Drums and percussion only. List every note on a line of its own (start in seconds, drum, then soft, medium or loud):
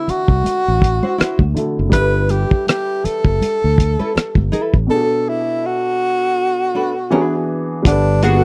0.08 closed hi-hat medium
0.08 low conga medium
0.28 kick medium
0.44 closed hi-hat medium
0.44 high conga medium
0.80 kick medium
0.80 muted conga soft
0.84 closed hi-hat medium
1.03 high conga medium
1.18 cross-stick loud
1.18 closed hi-hat medium
1.18 muted conga soft
1.39 kick medium
1.39 high conga medium
1.56 closed hi-hat medium
1.56 muted conga soft
1.56 low conga medium
1.92 kick medium
1.92 closed hi-hat medium
1.92 muted conga soft
1.92 low conga medium
2.29 closed hi-hat medium
2.29 muted conga soft
2.51 kick medium
2.67 cross-stick loud
2.67 closed hi-hat medium
2.67 muted conga soft
3.04 closed hi-hat medium
3.04 low conga medium
3.25 kick medium
3.42 closed hi-hat medium
3.42 high conga medium
3.78 kick medium
3.78 closed hi-hat medium
3.78 muted conga soft
4.00 high conga medium
4.16 cross-stick loud
4.16 closed hi-hat medium
4.16 muted conga soft
4.35 kick medium
4.35 high conga medium
4.53 closed hi-hat medium
4.53 low conga medium
4.74 kick medium
7.85 kick loud
7.85 closed hi-hat medium
7.85 muted conga soft
7.85 low conga medium
8.23 closed hi-hat medium
8.23 muted conga soft